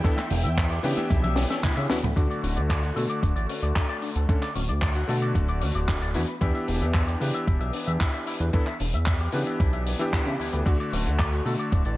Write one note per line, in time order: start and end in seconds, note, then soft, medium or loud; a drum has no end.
0.00 2.13 E4 medium
0.00 0.14 E4 loud
0.00 2.15 E5 medium
0.00 2.13 G5 medium
0.04 0.16 E3 loud
0.04 0.16 B3 medium
0.04 0.16 D4 medium
0.04 0.16 A4 loud
0.04 kick loud
0.04 closed hi-hat medium
0.04 cabasa soft
0.18 0.28 E5 medium
0.18 clap soft
0.18 closed hi-hat soft
0.18 high conga medium
0.30 0.46 E1 loud
0.30 0.35 D4 medium
0.30 open hi-hat loud
0.30 low conga medium
0.30 cabasa medium
0.44 0.79 E2 loud
0.44 0.48 E5 medium
0.44 closed hi-hat medium
0.44 cabasa medium
0.57 0.64 E5 medium
0.57 kick loud
0.57 clap loud
0.57 closed hi-hat medium
0.57 cabasa medium
0.70 0.81 G4 loud
0.70 closed hi-hat soft
0.83 0.95 C#3 medium
0.83 1.87 E3 medium
0.83 1.87 B3 medium
0.83 1.87 D4 medium
0.83 1.88 G4 loud
0.83 0.90 B4 loud
0.83 open hi-hat loud
0.83 muted conga medium
0.83 cabasa medium
0.97 1.07 E5 medium
0.97 closed hi-hat medium
0.97 muted conga medium
0.97 high conga medium
0.97 cabasa medium
1.10 1.46 B1 loud
1.10 1.20 E4 loud
1.10 kick loud
1.10 closed hi-hat medium
1.10 high tom medium
1.10 cabasa medium
1.24 1.34 E5 medium
1.24 closed hi-hat soft
1.24 high tom medium
1.36 1.41 D4 medium
1.36 snare medium
1.36 open hi-hat loud
1.36 muted conga medium
1.36 cabasa loud
1.50 1.54 E5 medium
1.50 snare medium
1.50 closed hi-hat medium
1.50 cabasa medium
1.63 1.74 E4 loud
1.63 kick loud
1.63 clap loud
1.63 closed hi-hat medium
1.63 mid tom medium
1.63 high conga loud
1.63 cabasa medium
1.77 1.87 C#3 loud
1.77 1.84 E5 medium
1.77 closed hi-hat soft
1.77 muted conga medium
1.90 2.01 D2 soft
1.90 1.97 E3 loud
1.90 1.97 B3 medium
1.90 1.98 D4 medium
1.90 1.97 E4 loud
1.90 1.98 F#4 loud
1.90 snare loud
1.90 open hi-hat loud
1.90 cabasa medium
2.03 2.14 D2 medium
2.03 2.10 B4 medium
2.03 closed hi-hat medium
2.03 mid tom medium
2.03 low conga medium
2.03 cabasa medium
2.16 2.27 D2 loud
2.16 2.93 D3 medium
2.16 2.93 A3 medium
2.16 2.27 D4 medium
2.16 2.94 F#4 loud
2.16 kick loud
2.16 closed hi-hat medium
2.30 2.40 D5 medium
2.30 closed hi-hat soft
2.43 2.58 D1 medium
2.43 2.47 C#4 medium
2.43 open hi-hat medium
2.56 2.92 D2 loud
2.56 2.61 D5 medium
2.56 closed hi-hat medium
2.70 2.76 D5 medium
2.70 kick loud
2.70 clap loud
2.70 closed hi-hat medium
2.83 2.93 F#4 medium
2.83 closed hi-hat soft
2.96 3.07 B2 medium
2.96 4.26 D3 medium
2.96 4.26 A3 medium
2.96 4.27 F#4 medium
2.96 3.03 A4 medium
2.96 open hi-hat medium
3.10 3.20 D5 medium
3.10 closed hi-hat medium
3.22 3.33 D1 medium
3.22 3.33 D4 medium
3.22 kick loud
3.22 closed hi-hat medium
3.36 3.46 A1 loud
3.36 3.46 D5 medium
3.36 closed hi-hat soft
3.49 3.53 C#4 medium
3.49 open hi-hat loud
3.63 3.73 D2 medium
3.63 3.67 D5 medium
3.63 closed hi-hat medium
3.76 3.86 D4 loud
3.76 kick loud
3.76 clap loud
3.76 closed hi-hat medium
3.89 3.96 D5 medium
3.89 closed hi-hat soft
4.02 4.09 D4 loud
4.02 open hi-hat medium
4.16 4.26 D2 medium
4.16 4.23 A4 medium
4.16 closed hi-hat medium
4.29 4.40 D3 medium
4.29 4.41 A3 medium
4.29 4.41 C#4 medium
4.29 4.39 D4 medium
4.29 4.41 A4 medium
4.29 kick loud
4.29 closed hi-hat medium
4.42 4.52 D5 medium
4.42 clap soft
4.42 closed hi-hat soft
4.55 4.71 D1 medium
4.55 4.60 C#4 medium
4.55 open hi-hat medium
4.69 5.04 D2 loud
4.69 4.73 D5 medium
4.69 closed hi-hat medium
4.82 4.89 D5 medium
4.82 kick loud
4.82 clap loud
4.82 closed hi-hat medium
4.95 5.05 F#4 medium
4.95 closed hi-hat soft
5.08 5.37 B2 medium
5.08 6.11 D3 medium
5.08 6.12 A3 medium
5.08 6.12 F#4 medium
5.08 5.15 A4 loud
5.08 open hi-hat medium
5.22 5.32 D5 medium
5.22 closed hi-hat medium
5.35 5.63 D1 loud
5.35 5.45 D4 medium
5.35 kick loud
5.35 closed hi-hat medium
5.48 5.59 D5 medium
5.48 closed hi-hat soft
5.61 5.72 D2 medium
5.61 5.66 C#4 medium
5.61 open hi-hat loud
5.75 6.17 D1 medium
5.75 5.79 D5 medium
5.75 closed hi-hat medium
5.88 5.98 D4 loud
5.88 kick loud
5.88 clap loud
5.88 closed hi-hat medium
6.02 6.09 D5 medium
6.02 closed hi-hat soft
6.14 6.25 E2 medium
6.14 6.22 E3 medium
6.14 6.22 B3 medium
6.14 6.22 D4 medium
6.14 6.22 E4 loud
6.14 6.23 F#4 medium
6.14 open hi-hat medium
6.28 6.35 B4 medium
6.28 closed hi-hat medium
6.41 6.52 E2 loud
6.41 7.18 E3 medium
6.41 7.18 B3 medium
6.41 7.18 D4 medium
6.41 6.52 E4 medium
6.41 7.19 G4 loud
6.41 kick loud
6.41 closed hi-hat medium
6.55 6.65 E5 medium
6.55 closed hi-hat soft
6.68 6.83 E1 medium
6.68 6.72 D4 medium
6.68 open hi-hat loud
6.81 7.16 E2 loud
6.81 6.85 E5 medium
6.81 closed hi-hat medium
6.94 7.01 E5 medium
6.94 kick loud
6.94 clap loud
6.94 closed hi-hat medium
7.07 7.18 G4 loud
7.07 closed hi-hat soft
7.20 7.32 C#3 medium
7.20 8.50 E3 medium
7.20 8.51 B3 medium
7.20 8.51 D4 medium
7.20 8.51 G4 medium
7.20 7.28 B4 medium
7.20 open hi-hat loud
7.34 7.44 E5 medium
7.34 closed hi-hat medium
7.47 7.58 E1 medium
7.47 7.58 E4 medium
7.47 kick loud
7.47 closed hi-hat medium
7.61 7.71 B1 medium
7.61 7.71 E5 medium
7.61 closed hi-hat soft
7.73 7.78 D4 medium
7.73 open hi-hat loud
7.87 7.98 E2 medium
7.87 7.91 E5 medium
7.87 closed hi-hat medium
8.00 8.11 E4 loud
8.00 kick loud
8.00 clap loud
8.00 closed hi-hat medium
8.14 8.21 E5 medium
8.14 closed hi-hat soft
8.27 8.34 E4 loud
8.27 open hi-hat medium
8.40 8.51 E2 medium
8.40 8.47 B4 medium
8.40 closed hi-hat medium
8.53 8.65 E3 medium
8.53 8.65 B3 medium
8.53 8.65 D4 medium
8.53 8.64 E4 medium
8.53 8.66 A4 loud
8.53 kick loud
8.53 closed hi-hat medium
8.66 8.77 E5 medium
8.66 clap soft
8.66 closed hi-hat soft
8.80 8.95 E1 medium
8.80 8.85 D4 medium
8.80 open hi-hat loud
8.94 9.29 E2 loud
8.94 8.98 E5 medium
8.94 closed hi-hat medium
9.06 9.14 E5 medium
9.06 kick loud
9.06 clap loud
9.06 closed hi-hat medium
9.20 9.30 G4 loud
9.20 closed hi-hat soft
9.32 9.44 C#3 medium
9.32 9.97 E3 medium
9.32 9.97 B3 medium
9.32 9.98 D4 medium
9.32 9.98 G4 medium
9.32 9.40 B4 loud
9.32 open hi-hat medium
9.47 9.57 E5 medium
9.47 closed hi-hat medium
9.60 9.95 B1 loud
9.60 9.70 E4 medium
9.60 kick loud
9.60 closed hi-hat medium
9.73 9.83 E5 medium
9.73 closed hi-hat soft
9.86 9.91 D4 medium
9.86 open hi-hat loud
9.99 10.63 E3 medium
9.99 10.63 B3 medium
9.99 10.64 D4 medium
9.99 10.64 G4 loud
9.99 10.04 E5 medium
9.99 closed hi-hat medium
10.13 10.23 E4 loud
10.13 kick loud
10.13 clap loud
10.13 closed hi-hat medium
10.25 10.37 C#3 medium
10.25 10.33 E5 medium
10.25 closed hi-hat soft
10.40 10.51 D2 soft
10.40 10.47 E4 loud
10.40 open hi-hat medium
10.53 10.63 D2 medium
10.53 10.60 B4 medium
10.53 closed hi-hat medium
10.66 10.77 D2 loud
10.66 11.42 D3 medium
10.66 11.43 A3 medium
10.66 10.77 D4 medium
10.66 11.44 F#4 loud
10.66 kick loud
10.66 closed hi-hat medium
10.80 10.90 D5 medium
10.80 closed hi-hat soft
10.93 11.08 D1 medium
10.93 10.97 C#4 medium
10.93 open hi-hat loud
11.06 11.41 D2 loud
11.06 11.16 D3 medium
11.06 closed hi-hat medium
11.19 11.26 D5 medium
11.19 kick loud
11.19 clap loud
11.19 closed hi-hat medium
11.33 11.43 F#4 medium
11.33 closed hi-hat soft
11.45 11.56 B2 medium
11.45 11.97 D3 medium
11.45 11.97 A3 medium
11.45 11.97 F#4 medium
11.45 11.53 A4 medium
11.45 open hi-hat medium
11.58 11.69 D5 medium
11.58 closed hi-hat medium
11.72 11.83 D1 medium
11.72 11.82 D4 medium
11.72 kick loud
11.72 closed hi-hat medium
11.85 11.96 A1 medium
11.85 11.96 D5 medium
11.85 closed hi-hat soft